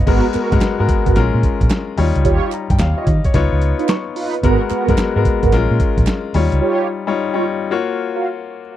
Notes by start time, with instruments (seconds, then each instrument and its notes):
0.06 fingered electric bass G#1, grand piano G#3 B3 F#4 A#4, analog polysynth B3 F#4 A#4, kick, crash
0.34 analog polysynth B3 F#4 A#4, muted fingered electric bass stroke, clap, closed hi-hat
0.52 fingered electric bass G#2, grand piano G#3 B3 F#4 A#4, kick, closed hi-hat
0.61 muted fingered electric bass stroke, snare, clap, closed hi-hat
0.79 fingered electric bass G#2, grand piano G#3 B3 F#4 A#4
0.88 kick, closed hi-hat
1.06 fingered electric bass G#1, analog polysynth B3 F#4 A#4, kick, closed hi-hat
1.16 fingered electric bass A#1, grand piano G#3 C#4 F4 A#4, snare, closed hi-hat
1.34 fingered electric bass A#2
1.43 kick, closed hi-hat
1.61 fingered electric bass A#1, kick, closed hi-hat
1.70 snare, clap, closed hi-hat
1.97 fingered electric bass D#2, grand piano G3 D#4 F4 C#5, open hi-hat
2.16 fingered electric bass C#2, closed hi-hat
2.24 fingered electric bass D#2, analog polysynth F4 G4 C#5, kick, closed hi-hat
2.52 grand piano A#5, clap, closed hi-hat
2.70 fingered electric bass G2, grand piano G5, kick, closed hi-hat
2.79 fingered electric bass D#2, grand piano F5, snare, clap, closed hi-hat
2.97 analog polysynth F4 G4 C#5, grand piano D#5
3.07 fingered electric bass D#3, kick, closed hi-hat
3.24 grand piano C#5, kick, closed hi-hat
3.34 fingered electric bass C#2, grand piano B3 D#4 F4 C#5, kick, snare, closed hi-hat
3.52 fingered electric bass C#2
3.61 closed hi-hat
3.79 analog polysynth D#4 F4 B4, closed hi-hat
3.88 grand piano C#6, snare, clap, closed hi-hat
4.15 analog polysynth D#4 F4 B4, open hi-hat
4.34 closed hi-hat
4.43 fingered electric bass G#1, grand piano G#3 B3 F#4 A#4, analog polysynth B3 F#4 A#4, kick, closed hi-hat
4.70 analog polysynth B3 F#4 A#4, muted fingered electric bass stroke, clap, closed hi-hat
4.88 fingered electric bass G#2, grand piano G#3 B3 F#4 A#4, kick, closed hi-hat
4.98 snare, clap, closed hi-hat
5.16 fingered electric bass G#2, grand piano G#3 B3 F#4 A#4
5.25 kick, closed hi-hat
5.42 fingered electric bass G#1, analog polysynth B3 F#4 A#4, kick, closed hi-hat
5.52 fingered electric bass A#1, grand piano G#3 C#4 F4 A#4, snare, closed hi-hat
5.71 fingered electric bass A#2
5.80 kick, closed hi-hat
5.97 fingered electric bass A#1, kick, closed hi-hat
6.07 snare, clap, closed hi-hat
6.34 fingered electric bass D#2, grand piano G3 D#4 F4 C#5, open hi-hat
6.52 fingered electric bass C#2, closed hi-hat
6.61 analog polysynth F4 G4 C#5
7.07 grand piano G3 D#4 F4 C#5
7.33 grand piano G3 D#4 F4 C#5, analog polysynth F4 G4 C#5
7.71 grand piano A#3 F4 F#4 C#5
8.15 analog polysynth F#4 A#4 F5